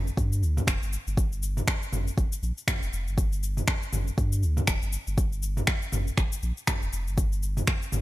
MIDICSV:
0, 0, Header, 1, 3, 480
1, 0, Start_track
1, 0, Key_signature, -2, "minor"
1, 0, Tempo, 500000
1, 1129, Time_signature, 4, 2, 24, 8
1, 7692, End_track
2, 0, Start_track
2, 0, Title_t, "Sub bass"
2, 0, Program_c, 0, 38
2, 0, Note_on_c, 0, 31, 98
2, 101, Note_off_c, 0, 31, 0
2, 165, Note_on_c, 0, 43, 86
2, 404, Note_on_c, 0, 38, 89
2, 419, Note_off_c, 0, 43, 0
2, 580, Note_off_c, 0, 38, 0
2, 647, Note_on_c, 0, 29, 84
2, 741, Note_off_c, 0, 29, 0
2, 787, Note_on_c, 0, 31, 83
2, 934, Note_off_c, 0, 31, 0
2, 1027, Note_on_c, 0, 31, 101
2, 1554, Note_off_c, 0, 31, 0
2, 1845, Note_on_c, 0, 31, 102
2, 2020, Note_off_c, 0, 31, 0
2, 2088, Note_on_c, 0, 31, 98
2, 2182, Note_off_c, 0, 31, 0
2, 2325, Note_on_c, 0, 34, 98
2, 2420, Note_off_c, 0, 34, 0
2, 2708, Note_on_c, 0, 29, 95
2, 2775, Note_off_c, 0, 29, 0
2, 2809, Note_on_c, 0, 29, 84
2, 2949, Note_on_c, 0, 31, 87
2, 2963, Note_off_c, 0, 29, 0
2, 3475, Note_off_c, 0, 31, 0
2, 3769, Note_on_c, 0, 31, 98
2, 3942, Note_off_c, 0, 31, 0
2, 4009, Note_on_c, 0, 43, 90
2, 4252, Note_on_c, 0, 38, 89
2, 4266, Note_off_c, 0, 43, 0
2, 4424, Note_off_c, 0, 38, 0
2, 4489, Note_on_c, 0, 29, 86
2, 4583, Note_off_c, 0, 29, 0
2, 4631, Note_on_c, 0, 31, 80
2, 4776, Note_off_c, 0, 31, 0
2, 4869, Note_on_c, 0, 31, 98
2, 5395, Note_off_c, 0, 31, 0
2, 5689, Note_on_c, 0, 31, 93
2, 5862, Note_off_c, 0, 31, 0
2, 5929, Note_on_c, 0, 31, 98
2, 6022, Note_off_c, 0, 31, 0
2, 6168, Note_on_c, 0, 34, 95
2, 6262, Note_off_c, 0, 34, 0
2, 6549, Note_on_c, 0, 29, 98
2, 6615, Note_off_c, 0, 29, 0
2, 6648, Note_on_c, 0, 29, 83
2, 6789, Note_on_c, 0, 31, 86
2, 6803, Note_off_c, 0, 29, 0
2, 7315, Note_off_c, 0, 31, 0
2, 7608, Note_on_c, 0, 31, 92
2, 7692, Note_off_c, 0, 31, 0
2, 7692, End_track
3, 0, Start_track
3, 0, Title_t, "Drums"
3, 71, Note_on_c, 9, 69, 51
3, 167, Note_off_c, 9, 69, 0
3, 167, Note_on_c, 9, 36, 110
3, 172, Note_on_c, 9, 69, 54
3, 263, Note_off_c, 9, 36, 0
3, 268, Note_off_c, 9, 69, 0
3, 312, Note_on_c, 9, 69, 96
3, 408, Note_off_c, 9, 69, 0
3, 412, Note_on_c, 9, 69, 51
3, 508, Note_off_c, 9, 69, 0
3, 550, Note_on_c, 9, 45, 90
3, 553, Note_on_c, 9, 69, 52
3, 646, Note_off_c, 9, 45, 0
3, 647, Note_on_c, 9, 36, 117
3, 649, Note_off_c, 9, 69, 0
3, 650, Note_on_c, 9, 26, 109
3, 653, Note_on_c, 9, 69, 91
3, 743, Note_off_c, 9, 36, 0
3, 746, Note_off_c, 9, 26, 0
3, 749, Note_off_c, 9, 69, 0
3, 794, Note_on_c, 9, 69, 55
3, 890, Note_off_c, 9, 69, 0
3, 891, Note_on_c, 9, 69, 88
3, 987, Note_off_c, 9, 69, 0
3, 1031, Note_on_c, 9, 69, 52
3, 1127, Note_off_c, 9, 69, 0
3, 1127, Note_on_c, 9, 36, 127
3, 1130, Note_on_c, 9, 69, 102
3, 1223, Note_off_c, 9, 36, 0
3, 1226, Note_off_c, 9, 69, 0
3, 1272, Note_on_c, 9, 69, 50
3, 1368, Note_off_c, 9, 69, 0
3, 1370, Note_on_c, 9, 69, 91
3, 1466, Note_off_c, 9, 69, 0
3, 1509, Note_on_c, 9, 45, 75
3, 1512, Note_on_c, 9, 69, 54
3, 1605, Note_off_c, 9, 45, 0
3, 1608, Note_off_c, 9, 69, 0
3, 1608, Note_on_c, 9, 36, 125
3, 1609, Note_on_c, 9, 26, 108
3, 1612, Note_on_c, 9, 69, 55
3, 1704, Note_off_c, 9, 36, 0
3, 1705, Note_off_c, 9, 26, 0
3, 1708, Note_off_c, 9, 69, 0
3, 1752, Note_on_c, 9, 69, 55
3, 1848, Note_off_c, 9, 69, 0
3, 1849, Note_on_c, 9, 45, 88
3, 1852, Note_on_c, 9, 69, 98
3, 1945, Note_off_c, 9, 45, 0
3, 1948, Note_off_c, 9, 69, 0
3, 1991, Note_on_c, 9, 69, 52
3, 2087, Note_off_c, 9, 69, 0
3, 2089, Note_on_c, 9, 36, 124
3, 2091, Note_on_c, 9, 69, 54
3, 2185, Note_off_c, 9, 36, 0
3, 2187, Note_off_c, 9, 69, 0
3, 2231, Note_on_c, 9, 69, 103
3, 2327, Note_off_c, 9, 69, 0
3, 2333, Note_on_c, 9, 69, 53
3, 2429, Note_off_c, 9, 69, 0
3, 2474, Note_on_c, 9, 69, 52
3, 2569, Note_on_c, 9, 36, 122
3, 2570, Note_off_c, 9, 69, 0
3, 2570, Note_on_c, 9, 26, 110
3, 2570, Note_on_c, 9, 45, 76
3, 2573, Note_on_c, 9, 69, 98
3, 2665, Note_off_c, 9, 36, 0
3, 2666, Note_off_c, 9, 26, 0
3, 2666, Note_off_c, 9, 45, 0
3, 2669, Note_off_c, 9, 69, 0
3, 2713, Note_on_c, 9, 69, 56
3, 2809, Note_off_c, 9, 69, 0
3, 2814, Note_on_c, 9, 69, 90
3, 2910, Note_off_c, 9, 69, 0
3, 2954, Note_on_c, 9, 69, 51
3, 3050, Note_off_c, 9, 69, 0
3, 3050, Note_on_c, 9, 36, 127
3, 3051, Note_on_c, 9, 69, 100
3, 3146, Note_off_c, 9, 36, 0
3, 3147, Note_off_c, 9, 69, 0
3, 3192, Note_on_c, 9, 69, 53
3, 3288, Note_off_c, 9, 69, 0
3, 3294, Note_on_c, 9, 69, 90
3, 3390, Note_off_c, 9, 69, 0
3, 3430, Note_on_c, 9, 45, 72
3, 3432, Note_on_c, 9, 69, 54
3, 3526, Note_off_c, 9, 45, 0
3, 3528, Note_off_c, 9, 69, 0
3, 3529, Note_on_c, 9, 26, 103
3, 3530, Note_on_c, 9, 36, 126
3, 3531, Note_on_c, 9, 69, 56
3, 3625, Note_off_c, 9, 26, 0
3, 3626, Note_off_c, 9, 36, 0
3, 3627, Note_off_c, 9, 69, 0
3, 3674, Note_on_c, 9, 69, 54
3, 3769, Note_on_c, 9, 45, 86
3, 3770, Note_off_c, 9, 69, 0
3, 3772, Note_on_c, 9, 69, 92
3, 3865, Note_off_c, 9, 45, 0
3, 3868, Note_off_c, 9, 69, 0
3, 3913, Note_on_c, 9, 69, 53
3, 4009, Note_off_c, 9, 69, 0
3, 4010, Note_on_c, 9, 36, 124
3, 4012, Note_on_c, 9, 69, 53
3, 4106, Note_off_c, 9, 36, 0
3, 4108, Note_off_c, 9, 69, 0
3, 4151, Note_on_c, 9, 69, 103
3, 4247, Note_off_c, 9, 69, 0
3, 4251, Note_on_c, 9, 69, 55
3, 4347, Note_off_c, 9, 69, 0
3, 4387, Note_on_c, 9, 45, 89
3, 4390, Note_on_c, 9, 69, 54
3, 4483, Note_off_c, 9, 45, 0
3, 4486, Note_off_c, 9, 69, 0
3, 4487, Note_on_c, 9, 26, 109
3, 4490, Note_on_c, 9, 36, 119
3, 4490, Note_on_c, 9, 69, 94
3, 4583, Note_off_c, 9, 26, 0
3, 4586, Note_off_c, 9, 36, 0
3, 4586, Note_off_c, 9, 69, 0
3, 4630, Note_on_c, 9, 69, 59
3, 4726, Note_off_c, 9, 69, 0
3, 4729, Note_on_c, 9, 69, 93
3, 4825, Note_off_c, 9, 69, 0
3, 4870, Note_on_c, 9, 69, 53
3, 4966, Note_off_c, 9, 69, 0
3, 4970, Note_on_c, 9, 36, 121
3, 4971, Note_on_c, 9, 69, 98
3, 5066, Note_off_c, 9, 36, 0
3, 5067, Note_off_c, 9, 69, 0
3, 5112, Note_on_c, 9, 69, 53
3, 5208, Note_off_c, 9, 69, 0
3, 5209, Note_on_c, 9, 69, 94
3, 5305, Note_off_c, 9, 69, 0
3, 5348, Note_on_c, 9, 45, 78
3, 5351, Note_on_c, 9, 69, 55
3, 5444, Note_off_c, 9, 45, 0
3, 5445, Note_on_c, 9, 26, 103
3, 5447, Note_off_c, 9, 69, 0
3, 5448, Note_on_c, 9, 69, 53
3, 5449, Note_on_c, 9, 36, 121
3, 5541, Note_off_c, 9, 26, 0
3, 5544, Note_off_c, 9, 69, 0
3, 5545, Note_off_c, 9, 36, 0
3, 5590, Note_on_c, 9, 69, 58
3, 5686, Note_off_c, 9, 69, 0
3, 5687, Note_on_c, 9, 45, 85
3, 5690, Note_on_c, 9, 69, 98
3, 5783, Note_off_c, 9, 45, 0
3, 5786, Note_off_c, 9, 69, 0
3, 5832, Note_on_c, 9, 69, 55
3, 5928, Note_off_c, 9, 69, 0
3, 5928, Note_on_c, 9, 26, 61
3, 5929, Note_on_c, 9, 36, 120
3, 5931, Note_on_c, 9, 69, 54
3, 6024, Note_off_c, 9, 26, 0
3, 6025, Note_off_c, 9, 36, 0
3, 6027, Note_off_c, 9, 69, 0
3, 6070, Note_on_c, 9, 69, 101
3, 6166, Note_off_c, 9, 69, 0
3, 6169, Note_on_c, 9, 69, 54
3, 6265, Note_off_c, 9, 69, 0
3, 6311, Note_on_c, 9, 69, 57
3, 6407, Note_off_c, 9, 69, 0
3, 6407, Note_on_c, 9, 26, 106
3, 6407, Note_on_c, 9, 45, 74
3, 6409, Note_on_c, 9, 36, 123
3, 6410, Note_on_c, 9, 69, 94
3, 6503, Note_off_c, 9, 26, 0
3, 6503, Note_off_c, 9, 45, 0
3, 6505, Note_off_c, 9, 36, 0
3, 6506, Note_off_c, 9, 69, 0
3, 6551, Note_on_c, 9, 69, 54
3, 6647, Note_off_c, 9, 69, 0
3, 6651, Note_on_c, 9, 69, 95
3, 6747, Note_off_c, 9, 69, 0
3, 6792, Note_on_c, 9, 69, 54
3, 6888, Note_off_c, 9, 69, 0
3, 6889, Note_on_c, 9, 36, 118
3, 6891, Note_on_c, 9, 69, 97
3, 6985, Note_off_c, 9, 36, 0
3, 6987, Note_off_c, 9, 69, 0
3, 7032, Note_on_c, 9, 69, 52
3, 7128, Note_off_c, 9, 69, 0
3, 7130, Note_on_c, 9, 69, 92
3, 7226, Note_off_c, 9, 69, 0
3, 7268, Note_on_c, 9, 45, 80
3, 7271, Note_on_c, 9, 69, 50
3, 7364, Note_off_c, 9, 45, 0
3, 7367, Note_off_c, 9, 69, 0
3, 7367, Note_on_c, 9, 26, 98
3, 7369, Note_on_c, 9, 36, 118
3, 7370, Note_on_c, 9, 69, 50
3, 7463, Note_off_c, 9, 26, 0
3, 7465, Note_off_c, 9, 36, 0
3, 7466, Note_off_c, 9, 69, 0
3, 7510, Note_on_c, 9, 69, 53
3, 7606, Note_off_c, 9, 69, 0
3, 7606, Note_on_c, 9, 45, 92
3, 7609, Note_on_c, 9, 69, 93
3, 7692, Note_off_c, 9, 45, 0
3, 7692, Note_off_c, 9, 69, 0
3, 7692, End_track
0, 0, End_of_file